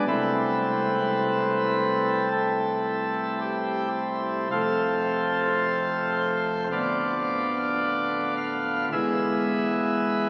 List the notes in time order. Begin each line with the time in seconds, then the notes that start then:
0.07 C2 C3 A3 E4 B4
2.31 A4
3.41 G4
4.51 F1 F2 A3 C4 F4 A4
6.17 C5
6.72 D1 D2 B3 F4 D5
8.37 F5
8.93 E1 E2 G#3 B3 E4 E5